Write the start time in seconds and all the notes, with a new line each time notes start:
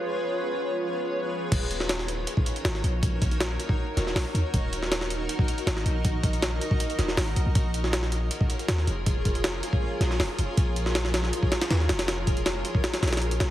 Already playing: F4 G#4 B4 C#5
1.52 D#1 D#4 F#4 A#4 C#5, kick, closed hi-hat, crash
1.71 closed hi-hat
1.80 snare
1.89 snare, closed hi-hat
1.99 snare
2.08 closed hi-hat
2.27 closed hi-hat
2.37 kick
2.46 closed hi-hat
2.56 closed hi-hat
2.65 G#1, snare, closed hi-hat
2.75 snare
2.84 A#1, closed hi-hat
3.03 kick, closed hi-hat
3.22 kick, closed hi-hat
3.31 closed hi-hat
3.40 snare, closed hi-hat
3.60 closed hi-hat
3.69 kick
3.97 D#1, snare, closed hi-hat
4.07 snare
4.16 A#1, snare, open hi-hat
4.34 D#2, closed hi-hat
4.54 D#1 D#5, kick, closed hi-hat
4.73 closed hi-hat
4.83 snare
4.92 snare, closed hi-hat
5.01 snare
5.10 closed hi-hat
5.29 closed hi-hat
5.39 kick
5.48 closed hi-hat
5.58 closed hi-hat
5.67 G#1, snare, closed hi-hat
5.77 snare
5.85 A#1, closed hi-hat
6.05 kick, closed hi-hat
6.23 kick, closed hi-hat
6.33 closed hi-hat
6.42 snare, closed hi-hat
6.61 closed hi-hat
6.71 kick
6.80 closed hi-hat
6.90 closed hi-hat
6.99 D#1, snare, closed hi-hat
7.08 snare
7.17 G#1, snare, open hi-hat
7.36 A#1, closed hi-hat
7.46 A#1
7.55 A#1 F4 G#4 A#4 C#5, kick, closed hi-hat
7.74 closed hi-hat
7.84 snare
7.93 snare, closed hi-hat
8.03 snare
8.12 closed hi-hat
8.31 closed hi-hat
8.41 kick
8.50 closed hi-hat
8.59 closed hi-hat
8.68 D#2, snare, closed hi-hat
8.78 snare
8.87 F1, closed hi-hat
9.06 kick, closed hi-hat
9.25 kick, closed hi-hat
9.35 closed hi-hat
9.44 snare, closed hi-hat
9.63 closed hi-hat
9.73 kick
10.00 A#1, snare, closed hi-hat
10.11 snare
10.20 F1, snare, open hi-hat
10.39 F1, closed hi-hat
10.57 A#1, kick, closed hi-hat
10.76 closed hi-hat
10.86 snare
10.95 snare, closed hi-hat
11.05 snare
11.14 snare, closed hi-hat
11.24 snare
11.33 closed hi-hat
11.43 kick
11.52 snare, closed hi-hat
11.62 snare, closed hi-hat
11.70 D#2, snare, closed hi-hat
11.80 snare
11.89 F1, snare, closed hi-hat
11.99 snare, closed hi-hat
12.08 snare, closed hi-hat
12.27 kick, closed hi-hat
12.37 closed hi-hat
12.46 snare, closed hi-hat
12.65 closed hi-hat
12.75 kick
12.84 snare, closed hi-hat
12.94 snare, closed hi-hat
13.02 A#1, snare, closed hi-hat
13.08 snare, closed hi-hat
13.13 snare, closed hi-hat
13.17 snare, closed hi-hat
13.22 closed hi-hat
13.31 closed hi-hat
13.40 A#1, snare, closed hi-hat